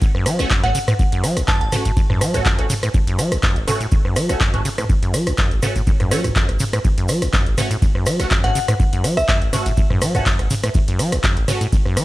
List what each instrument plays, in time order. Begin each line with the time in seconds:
0.02 acid bass F#2, kick, ride, cabasa
0.15 acid bass F#2, cross-stick
0.26 acid bass F#3, cross-stick, open hi-hat, ride, cabasa
0.39 acid bass F#1, synth stab A3 C#4 F#4, cross-stick, closed hi-hat, cabasa
0.50 acid bass F#2, kick, clap, ride, cabasa
0.64 acid bass F#1, synth stab A3 C#4 F#4, synth bell F#5, cross-stick, closed hi-hat, mid tom
0.75 acid bass C#3, open hi-hat, ride, cabasa
0.88 acid bass A2, cross-stick, closed hi-hat, mid tom, cabasa
0.99 acid bass F#2, kick, ride, cabasa
1.12 acid bass F#2, closed hi-hat
1.24 acid bass F#3, cross-stick, open hi-hat, ride, cabasa
1.37 acid bass F#1, cross-stick, closed hi-hat, cabasa
1.48 acid bass F#2, synth bell A5, kick, cross-stick, clap, ride, cabasa
1.61 acid bass F#1, synth bell A5, closed hi-hat
1.72 acid bass C#3, synth stab A3 C#4 F#4, cross-stick, mid tom, open hi-hat, ride, cabasa
1.85 acid bass A2, kick, closed hi-hat, cabasa
1.97 acid bass F#2, kick, ride, cabasa
2.10 acid bass F#2, cross-stick, mid tom
2.21 acid bass F#3, cross-stick, open hi-hat, ride, cabasa
2.34 acid bass F#1, synth stab A3 C#4 F#4, cross-stick, closed hi-hat, mid tom, cabasa
2.45 acid bass F#2, kick, clap, ride, cabasa
2.59 acid bass F#1, synth stab A3 C#4 F#4, cross-stick, closed hi-hat
2.70 acid bass C#3, mid tom, open hi-hat, ride, cabasa
2.83 acid bass A2, cross-stick, closed hi-hat, cabasa
2.94 acid bass F#2, kick, ride, cabasa
3.07 acid bass F#2, closed hi-hat
3.19 acid bass F#3, cross-stick, open hi-hat, ride, cabasa
3.32 acid bass F#1, cross-stick, closed hi-hat, cabasa
3.43 acid bass F#2, kick, cross-stick, clap, ride, cabasa
3.56 acid bass F#1, closed hi-hat
3.68 acid bass C#3, synth stab A3 C#4 F#4, cross-stick, mid tom, open hi-hat, ride, cabasa
3.81 acid bass A2, closed hi-hat, cabasa
3.91 acid bass F#2, kick, ride, cabasa
4.05 acid bass F#2, cross-stick
4.16 acid bass F#3, cross-stick, open hi-hat, ride, cabasa
4.29 acid bass F#1, synth stab A3 C#4 F#4, cross-stick, closed hi-hat, cabasa
4.40 acid bass F#2, kick, clap, ride, cabasa
4.54 acid bass F#1, synth stab A3 C#4 F#4, cross-stick, closed hi-hat, mid tom
4.65 acid bass C#3, open hi-hat, ride, cabasa
4.78 acid bass A2, cross-stick, closed hi-hat, mid tom, cabasa
4.89 acid bass F#2, kick, ride, cabasa
5.02 acid bass F#2, closed hi-hat
5.14 acid bass F#3, cross-stick, open hi-hat, ride, cabasa
5.27 acid bass F#1, cross-stick, closed hi-hat, cabasa
5.38 acid bass F#2, kick, cross-stick, clap, ride, cabasa
5.51 acid bass F#1, closed hi-hat
5.62 acid bass C#3, synth stab A3 C#4 F#4, cross-stick, mid tom, open hi-hat, ride, cabasa
5.76 acid bass A2, kick, closed hi-hat, cabasa
5.87 acid bass F#2, kick, ride, cabasa
6.00 acid bass F#2, cross-stick, closed hi-hat, mid tom
6.11 acid bass F#3, synth stab A3 C#4 F#4, cross-stick, open hi-hat, ride, cabasa
6.24 acid bass F#1, cross-stick, closed hi-hat, mid tom, cabasa
6.36 acid bass F#2, kick, clap, ride, cabasa
6.49 acid bass F#1, cross-stick, closed hi-hat
6.59 acid bass C#3, mid tom, open hi-hat, ride, cabasa
6.73 acid bass A2, cross-stick, closed hi-hat, cabasa
6.84 acid bass F#2, kick, ride, cabasa
6.98 acid bass F#2, closed hi-hat
7.08 acid bass F#3, cross-stick, open hi-hat, ride, cabasa
7.22 acid bass F#1, cross-stick, closed hi-hat, cabasa
7.33 acid bass F#2, kick, cross-stick, clap, ride, cabasa
7.46 acid bass F#1, closed hi-hat
7.58 acid bass C#3, synth stab A3 C#4 F#4, cross-stick, mid tom, open hi-hat, ride, cabasa
7.71 acid bass A2, closed hi-hat, cabasa
7.82 acid bass F#2, kick, ride, cabasa
7.95 acid bass F#2, cross-stick
8.06 acid bass F#3, cross-stick, open hi-hat, ride, cabasa
8.19 acid bass F#1, synth stab A3 C#4 F#4, cross-stick, closed hi-hat, cabasa
8.30 acid bass F#2, kick, clap, ride, cabasa
8.44 acid bass F#1, synth stab A3 C#4 F#4, synth bell F#5, cross-stick, closed hi-hat, mid tom
8.55 acid bass C#3, open hi-hat, ride, cabasa
8.68 acid bass A2, cross-stick, closed hi-hat, mid tom, cabasa
8.80 acid bass F#2, kick, ride, cabasa
8.93 acid bass F#2, closed hi-hat
9.04 acid bass F#3, cross-stick, open hi-hat, ride, cabasa
9.17 acid bass F#1, synth bell E5, cross-stick, closed hi-hat, cabasa
9.28 acid bass F#2, synth bell E5, kick, cross-stick, clap, ride, cabasa
9.42 acid bass F#1, closed hi-hat
9.53 acid bass C#3, synth stab A3 C#4 F#4, cross-stick, mid tom, open hi-hat, ride, cabasa
9.66 acid bass A2, kick, closed hi-hat, cabasa
9.77 acid bass F#2, kick, ride, cabasa
9.90 acid bass F#2, cross-stick, mid tom
10.01 acid bass F#3, cross-stick, open hi-hat, ride, cabasa
10.15 acid bass F#1, synth stab A3 C#4 F#4, cross-stick, closed hi-hat, mid tom, cabasa
10.26 acid bass F#2, kick, clap, ride, cabasa
10.39 acid bass F#1, cross-stick, closed hi-hat
10.50 acid bass C#3, mid tom, open hi-hat, ride, cabasa
10.63 acid bass A2, cross-stick, closed hi-hat, cabasa
10.74 acid bass F#2, kick, ride, cabasa
10.88 acid bass F#2, closed hi-hat
10.99 acid bass F#3, cross-stick, open hi-hat, ride, cabasa
11.12 acid bass F#1, cross-stick, closed hi-hat, cabasa
11.23 acid bass F#2, kick, cross-stick, clap, ride, cabasa
11.37 acid bass F#1, closed hi-hat
11.48 acid bass C#3, synth stab A3 C#4 F#4, cross-stick, mid tom, open hi-hat, ride, cabasa
11.61 acid bass A2, closed hi-hat, cabasa
11.72 acid bass F#2, kick, ride, cabasa
11.86 acid bass F#2, cross-stick
11.97 acid bass F#3, cross-stick, open hi-hat, ride, cabasa